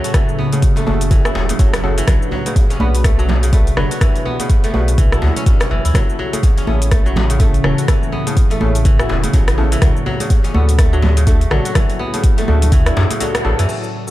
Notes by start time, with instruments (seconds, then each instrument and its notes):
Already playing: ambient pad A2 C#3 F#3 C#4 F#4, kora C#3 F#3 A3 B3 C#4, synth keys C#4 F#4 A4
0.04 kora F#4, closed hi-hat, shaker
0.14 kora E3, synth keys C#4 F#4 A4, kick, cross-stick, closed hi-hat, mid tom, djembe tone, shaker
0.29 shaker
0.38 kora B3, djembe tone
0.53 kora C#3, synth keys C#4 F#4 A4, closed hi-hat, high conga, shaker
0.62 kick, closed hi-hat, djembe tone, shaker
0.76 kora A3, closed hi-hat, djembe slap, shaker
0.87 sub bass F#1, kora C#3, synth keys C#4 F#4 A4, djembe tone, high conga
1.01 closed hi-hat, shaker
1.11 kora E3, kick, closed hi-hat, mid tom, djembe tone, shaker
1.25 synth keys C#4 F#4 G#4, kora E4, cross-stick, shaker
1.35 sub bass E1, djembe slap, djembe tone
1.49 kora C#3, closed hi-hat, high conga, shaker
1.59 sub bass F#1, kora F#3, synth keys C#4 F#4 A4, kick, closed hi-hat, djembe tone, shaker
1.73 cross-stick, closed hi-hat, djembe slap, shaker
1.83 kora C#3, synth keys C#4 F#4 A4, djembe tone
1.98 kora E3, closed hi-hat, shaker
2.07 sub bass B1, ambient pad B2, kora F#3, synth keys D4 F#4 B4, kick, cross-stick, closed hi-hat, mid tom, djembe tone, low conga, shaker
2.22 shaker
2.31 kora F#3, djembe tone
2.46 kora C#3, synth keys D4 F#4 B4, closed hi-hat, high conga, shaker
2.56 kick, closed hi-hat, djembe tone, shaker
2.70 kora C#4, closed hi-hat, djembe slap, shaker
2.80 sub bass B1, kora B3, synth keys D4 F#4 B4, high conga, djembe tone
2.95 closed hi-hat, shaker
3.04 kora A3, kick, cross-stick, closed hi-hat, djembe tone, shaker
3.19 kora F#3, synth keys D4 F#4 A4, shaker
3.28 djembe slap, djembe tone, high conga, low conga
3.43 kora C#3, closed hi-hat, shaker
3.53 kora A3, synth keys D4 F#4 B4, kick, closed hi-hat, djembe tone, shaker
3.67 closed hi-hat, shaker
3.77 sub bass F#1, kora F#3, synth keys D4 F#4 B4, cross-stick, mid tom, djembe tone
3.91 kora F#4, closed hi-hat, shaker
4.01 kora E3, synth keys D4 F#4 B4, ambient pad E4, kick, cross-stick, closed hi-hat, mid tom, djembe tone, shaker
4.16 closed hi-hat, shaker
4.25 kora B3, djembe tone
4.40 kora C#3, synth keys D4 F#4 B4, closed hi-hat, high conga, shaker
4.50 kick, closed hi-hat, djembe tone, shaker
4.64 kora A3, closed hi-hat, djembe slap, shaker
4.74 sub bass B1, kora C#3, synth keys D4 F#4 B4, djembe tone, high conga
4.88 closed hi-hat, shaker
4.98 kora E3, kick, closed hi-hat, mid tom, djembe tone, shaker
5.12 synth keys D4 F#4 A4, kora E4, cross-stick, shaker
5.22 sub bass D2, kora F#3, djembe slap, djembe tone
5.36 kora C#4, closed hi-hat, high conga, shaker
5.46 synth keys D4 F#4 B4, kick, closed hi-hat, djembe tone, shaker
5.60 cross-stick, closed hi-hat, djembe slap, shaker
5.70 sub bass F#1, kora E3, djembe tone
5.85 sub bass D2, kora E4, closed hi-hat, shaker
5.94 sub bass A1, ambient pad A2 C#3 E3 C#4, kora F#3, synth keys C#4 E4 A4, kick, cross-stick, closed hi-hat, mid tom, djembe tone, low conga, shaker
6.10 shaker
6.19 kora F#3, djembe tone
6.33 kora C#3, synth keys C#4 E4 A4, closed hi-hat, high conga, shaker
6.43 kick, closed hi-hat, djembe tone, shaker
6.58 kora C#4, closed hi-hat, djembe slap, shaker
6.67 sub bass A1, kora B3, synth keys C#4 E4 A4, high conga, djembe tone
6.82 closed hi-hat, shaker
6.91 kora A3, kick, cross-stick, closed hi-hat, djembe tone, shaker
7.06 kora F#3, synth keys C#4 E4 F#4, shaker
7.16 djembe slap, djembe tone, high conga, low conga
7.30 kora C#3, closed hi-hat, shaker
7.39 kora A3, synth keys C#4 E4 A4, kick, closed hi-hat, djembe tone, shaker
7.54 closed hi-hat, shaker
7.64 sub bass E1, kora F#3, synth keys C#4 E4 A4, cross-stick, mid tom, djembe tone
7.78 kora F#4, closed hi-hat, shaker
7.88 kora E3, ambient pad B3, synth keys C#4 E4 A4, kick, cross-stick, closed hi-hat, mid tom, djembe tone, shaker
8.03 shaker
8.12 kora B3, djembe tone
8.27 kora C#3, synth keys C#4 E4 A4, closed hi-hat, high conga, shaker
8.37 kick, closed hi-hat, djembe tone, shaker
8.50 kora A3, closed hi-hat, djembe slap, shaker
8.60 sub bass A1, kora C#3, synth keys C#4 E4 A4, djembe tone, high conga
8.75 closed hi-hat, shaker
8.85 kora E3, kick, closed hi-hat, mid tom, djembe tone, shaker
8.99 synth keys C#4 E4 F#4, kora E4, cross-stick, shaker
9.09 sub bass E1, djembe slap, djembe tone
9.24 kora C#3, closed hi-hat, high conga, shaker
9.33 sub bass A1, kora F#3, synth keys C#4 E4 A4, kick, closed hi-hat, djembe tone, shaker
9.48 cross-stick, closed hi-hat, djembe slap, shaker
9.58 kora C#3, synth keys C#4 E4 A4, djembe tone
9.72 kora E3, closed hi-hat, shaker
9.82 sub bass D2, kora F#3, ambient pad F#3 F#4, synth keys D4 F#4 A4, kick, cross-stick, closed hi-hat, mid tom, djembe tone, low conga, shaker
9.96 shaker
10.06 kora F#3, djembe tone
10.20 kora C#3, synth keys D4 F#4 A4, closed hi-hat, high conga, shaker
10.30 kick, closed hi-hat, djembe tone, shaker
10.44 kora C#4, closed hi-hat, djembe slap, shaker
10.54 sub bass D2, kora B3, synth keys D4 F#4 A4, djembe tone, high conga
10.69 closed hi-hat, shaker
10.79 kora A3, kick, cross-stick, closed hi-hat, djembe tone, shaker
10.93 kora F#3, synth keys D4 F#4 A4, shaker
11.02 djembe slap, djembe tone, high conga, low conga
11.17 kora C#3, closed hi-hat, shaker
11.27 kora A3, synth keys D4 F#4 A4, kick, closed hi-hat, djembe tone, shaker
11.41 closed hi-hat, shaker
11.51 sub bass A1, kora F#3, synth keys D4 F#4 A4, cross-stick, mid tom, djembe tone
11.65 kora F#4, closed hi-hat, shaker
11.75 kora E3, synth keys D4 F#4 A4, ambient pad E4, kick, cross-stick, closed hi-hat, mid tom, djembe tone, low conga, shaker
11.90 closed hi-hat, shaker
11.99 kora B3, djembe tone
12.14 kora C#3, synth keys D4 F#4 A4, closed hi-hat, high conga, shaker
12.24 kick, closed hi-hat, djembe tone, shaker
12.38 kora A3, closed hi-hat, djembe slap, shaker
12.48 sub bass D2, kora C#3, synth keys D4 F#4 A4, djembe tone, high conga
12.62 closed hi-hat, low conga, shaker
12.72 kora E3, kick, closed hi-hat, mid tom, djembe tone, shaker
12.86 synth keys D4 F#4 A4, kora E4, cross-stick, closed hi-hat, shaker
12.96 sub bass F#2, djembe slap, djembe tone
13.11 kora C#3, closed hi-hat, high conga, shaker
13.20 kora F#3, synth keys D4 F#4 A4, closed hi-hat, djembe tone, shaker
13.35 cross-stick, closed hi-hat, djembe slap, shaker
13.45 sub bass A1, kora C#3, synth keys D4 F#4 A4, djembe tone
13.59 sub bass F#2, kora E3, closed hi-hat, djembe slap, shaker
13.69 ambient pad C#3 F#3 A3 F#4 A4, synth keys C#4 F#4 A4, crash, shaker
13.84 shaker
14.07 synth keys C#4 F#4 A4